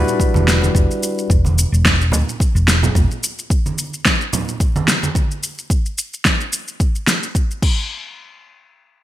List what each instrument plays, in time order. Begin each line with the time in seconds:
Already playing: tine electric piano G3 D4 E4 F#4 B4
0.08 shaker
0.20 kick, shaker
0.34 fingered electric bass E1, high conga, shaker
0.48 snare, shaker
0.62 high conga, shaker
0.75 fingered electric bass E1, kick, shaker
0.91 shaker
1.03 shaker
1.19 shaker
1.30 fingered electric bass E1, kick, shaker
1.45 high conga, shaker
1.58 shaker
1.72 fingered electric bass E1, shaker
1.85 kick, snare, shaker
2.01 shaker
2.12 fingered electric bass D2, low conga, shaker
2.29 shaker
2.40 kick, shaker
2.55 fingered electric bass E1, shaker
2.68 snare, shaker
2.83 low conga, shaker
2.95 fingered electric bass E1, kick, shaker
3.11 shaker
3.23 shaker
3.39 shaker
3.50 kick, shaker
3.66 high conga, shaker
3.78 shaker
3.94 shaker
4.05 kick, snare, shaker
4.21 shaker
4.33 low conga, shaker
4.49 shaker
4.60 kick, shaker
4.76 high conga, shaker
4.88 snare, shaker
5.03 high conga, shaker
5.15 kick, shaker
5.31 shaker
5.43 shaker
5.58 shaker
5.70 kick, shaker
5.86 shaker
5.98 shaker
6.14 shaker
6.25 kick, snare, shaker
6.41 shaker
6.53 shaker
6.68 shaker
6.80 kick, shaker
6.95 shaker
7.07 snare, shaker
7.23 shaker
7.35 kick, shaker
7.51 shaker
7.62 kick, crash